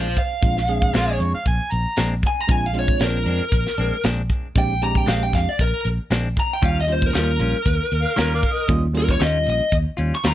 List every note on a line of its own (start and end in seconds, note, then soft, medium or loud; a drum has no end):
0.00 0.14 A#1 medium
0.00 0.16 C5 medium
0.00 0.17 F5 medium
0.17 1.17 F5 medium
0.17 kick medium
0.17 closed hi-hat medium
0.41 0.90 A#1 medium
0.41 0.59 G#3 medium
0.41 0.59 C4 medium
0.41 0.59 D4 medium
0.41 0.59 F4 medium
0.41 kick loud
0.41 closed hi-hat medium
0.57 snare soft
0.68 1.34 G#3 medium
0.68 1.34 C4 medium
0.68 1.34 D4 medium
0.68 1.34 G#4 medium
0.68 closed hi-hat medium
0.82 kick medium
0.94 1.18 A#1 medium
0.94 1.10 A#2 medium
0.94 1.10 G#3 medium
0.94 1.11 C4 medium
0.94 1.11 D4 medium
0.94 1.11 F4 medium
0.94 snare medium
0.94 closed hi-hat medium
1.09 1.22 G#4 medium
1.20 1.32 F2 medium
1.20 1.33 C#5 medium
1.20 closed hi-hat soft
1.35 1.45 F5 medium
1.35 muted fingered electric bass stroke soft
1.46 1.58 A#1 medium
1.46 1.73 G#5 medium
1.46 kick medium
1.46 closed hi-hat medium
1.71 1.84 A#1 medium
1.71 2.10 A#5 medium
1.71 closed hi-hat medium
1.97 2.21 A#1 medium
1.97 2.13 A#2 medium
1.97 2.14 G#3 medium
1.97 2.14 C4 medium
1.97 2.14 D4 medium
1.97 snare medium
1.97 closed hi-hat medium
2.23 kick medium
2.23 closed hi-hat medium
2.27 2.41 G#5 medium
2.41 2.51 A#5 medium
2.48 2.97 A#1 medium
2.48 2.65 G#3 medium
2.48 2.65 C4 medium
2.48 2.66 D4 medium
2.48 2.66 F4 medium
2.48 2.66 G#5 medium
2.48 kick loud
2.48 closed hi-hat medium
2.66 2.76 F5 medium
2.73 3.40 G#3 medium
2.73 3.40 C4 medium
2.73 3.41 D4 medium
2.73 3.41 F4 medium
2.73 closed hi-hat medium
2.79 3.02 C#5 medium
2.88 kick medium
3.00 3.24 A#1 medium
3.00 3.17 A#2 medium
3.00 3.18 G#3 medium
3.00 3.18 C4 medium
3.00 3.18 D4 medium
3.00 snare medium
3.00 closed hi-hat medium
3.04 4.03 A#4 medium
3.26 3.39 F2 medium
3.26 3.44 G#3 soft
3.26 3.43 C4 soft
3.26 3.42 D4 soft
3.26 closed hi-hat medium
3.41 muted fingered electric bass stroke soft
3.52 3.65 A#1 medium
3.52 kick medium
3.52 closed hi-hat medium
3.67 snare soft
3.78 3.91 A#1 medium
3.78 3.96 G#3 soft
3.78 3.95 C4 soft
3.78 3.94 D4 medium
3.78 closed hi-hat medium
4.04 4.28 A#1 medium
4.04 4.20 A#2 medium
4.04 4.21 G#3 medium
4.04 4.21 C4 medium
4.04 4.21 D4 medium
4.04 snare medium
4.04 closed hi-hat medium
4.30 kick medium
4.30 closed hi-hat medium
4.56 5.04 A#1 medium
4.56 4.73 G#3 medium
4.56 4.73 C4 medium
4.56 4.73 D4 medium
4.56 4.73 G4 medium
4.56 4.82 G5 medium
4.56 kick loud
4.56 closed hi-hat medium
4.82 5.47 G#3 medium
4.82 5.48 C4 medium
4.82 5.48 D4 medium
4.82 5.48 G4 medium
4.82 4.97 A#5 medium
4.82 closed hi-hat medium
4.95 5.08 G5 medium
4.95 kick medium
5.06 5.31 A#1 medium
5.06 5.23 A#2 medium
5.06 5.24 G#3 medium
5.06 5.24 C4 medium
5.06 5.24 D4 medium
5.06 5.22 F5 medium
5.06 snare medium
5.06 closed hi-hat medium
5.23 5.34 G5 medium
5.33 5.46 F2 medium
5.33 5.49 F5 medium
5.33 kick medium
5.33 snare soft
5.33 closed hi-hat medium
5.47 5.60 D5 medium
5.47 muted fingered electric bass stroke soft
5.59 5.72 A#1 medium
5.59 5.85 A#4 medium
5.59 kick medium
5.59 closed hi-hat medium
5.85 5.98 A#1 medium
5.85 closed hi-hat medium
6.10 6.34 A#1 medium
6.10 6.27 A#2 medium
6.10 6.27 G#3 medium
6.10 6.28 C4 medium
6.10 6.28 D4 medium
6.10 snare loud
6.10 closed hi-hat medium
6.37 6.52 A#5 medium
6.37 kick medium
6.37 closed hi-hat medium
6.53 6.65 G5 medium
6.62 7.10 D#2 loud
6.62 6.78 D#3 medium
6.62 6.79 G3 medium
6.62 6.79 A#3 medium
6.62 6.80 C#4 medium
6.62 6.79 C#4 medium
6.62 6.80 F4 medium
6.62 6.79 F4 medium
6.62 6.77 F5 medium
6.62 kick loud
6.62 closed hi-hat medium
6.81 6.92 D#5 medium
6.87 7.54 G3 medium
6.87 7.54 A#3 medium
6.87 7.54 C#4 medium
6.87 7.54 F4 medium
6.87 closed hi-hat soft
6.92 7.06 C5 medium
7.02 kick medium
7.06 7.16 A#4 medium
7.13 7.38 D#2 medium
7.13 7.30 D#3 medium
7.13 7.31 G3 medium
7.13 7.31 C#4 medium
7.13 7.31 F4 medium
7.13 snare medium
7.13 closed hi-hat medium
7.18 8.67 A#4 medium
7.40 7.52 A#1 medium
7.40 7.57 G3 soft
7.40 7.57 C#4 soft
7.40 7.56 F4 soft
7.40 closed hi-hat medium
7.54 muted fingered electric bass stroke soft
7.66 7.78 D#2 medium
7.66 kick medium
7.66 closed hi-hat medium
7.92 8.04 D#2 medium
7.92 closed hi-hat medium
8.02 8.20 F5 medium
8.16 8.41 D#2 medium
8.16 8.33 D#3 medium
8.16 8.33 G3 medium
8.16 8.34 C#4 medium
8.16 8.34 F4 medium
8.16 8.34 A#5 medium
8.16 snare loud
8.16 closed hi-hat medium
8.35 8.43 A#4 soft
8.35 8.42 D5 soft
8.35 8.54 F5 medium
8.43 kick medium
8.43 closed hi-hat medium
8.52 8.82 D#5 medium
8.68 9.17 D#2 loud
8.68 8.86 G3 medium
8.68 8.86 A#3 medium
8.68 8.86 C#4 medium
8.68 8.86 F4 medium
8.68 kick loud
8.68 closed hi-hat medium
8.93 9.60 G3 medium
8.93 9.60 A#3 medium
8.93 9.60 C#4 medium
8.93 9.61 F4 medium
8.93 9.10 A#4 medium
8.93 closed hi-hat medium
9.09 9.22 C#5 medium
9.09 kick medium
9.20 9.44 D#2 medium
9.20 9.36 D#3 medium
9.20 9.37 G3 medium
9.20 9.37 C#4 medium
9.20 9.38 F4 medium
9.20 9.47 D#5 medium
9.20 snare medium
9.20 closed hi-hat medium
9.46 9.59 A#1 medium
9.46 9.73 D#5 medium
9.46 closed hi-hat medium
9.61 muted fingered electric bass stroke soft
9.72 9.85 D#2 loud
9.72 kick medium
9.72 closed hi-hat medium
9.97 10.11 D#2 medium
9.97 10.15 G3 soft
9.97 10.15 C#4 soft
9.97 10.14 F4 soft
9.97 closed hi-hat medium
10.15 10.25 C#6 medium
10.24 10.34 D#2 medium
10.24 10.34 D#3 medium
10.24 10.34 G3 medium
10.24 10.34 C#4 medium
10.24 10.34 F4 medium
10.24 snare loud
10.24 closed hi-hat medium
10.28 10.34 A#5 medium